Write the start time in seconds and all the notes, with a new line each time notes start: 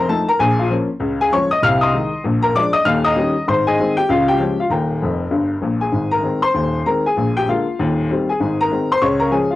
Already playing: F1 F2 A#5
0.00 A#4
0.08 F3 A3 D#4 A4 A5
0.28 A#4 A#5
0.39 A#1 A#2 G#4 G#5
0.59 F4 F5
0.70 F3 A#3 C#4
1.00 C#2 C#3
1.21 G#4 G#5
1.32 F3 G#3 C#4 C#5 C#6
1.51 D#5 D#6
1.62 C2 C3 F5 F6
1.81 D#5 C6 D#6
1.93 D#3 G#3 D#4
2.24 A#1 A#2
2.42 A#4 A#5
2.55 F3 G#3 D4 D5 D6
2.73 D#5 D#6
2.85 D#1 D#2 F5 F6
3.04 D#5 A#5 D#6
3.17 D#3 G3 C#4
3.48 G#1 G#2 C5 C6
3.67 G#4 D#5 G#5
3.79 D#3 G#3 C4
3.97 G4 G5
4.09 C#2 C#3 F4 F5
4.28 G4 G5
4.39 F3 G#3 C#4
4.60 F4 F5
4.70 D#1 D#2 A#4 G5 A#5
5.02 F1 F2
5.31 G1 G2
5.62 A#1 A#2
5.81 G#4 G#5
5.92 G#1 G#2
6.11 A#4 A#5
6.23 D#3 G#3 C4
6.42 C5 C6
6.54 D#1 D#2
6.86 D#3 G#3 C4 A#4 A#5
7.06 G#4 G#5
7.16 A#1 A#2
7.37 G4 G5
7.48 D3 G#3 A#3 F4 F5
7.79 D#1 D#2
8.11 D#3 G3 C4
8.29 G#4 G#5
8.40 G#1 G#2
8.61 A#4 A#5
8.72 D#3 G#3 C4
8.92 C5 C6
9.01 C#2 C#3 C#5 C#6
9.20 A#4 A#5
9.31 F3 G#3 C#4 G#4 G#5
9.51 F4 F5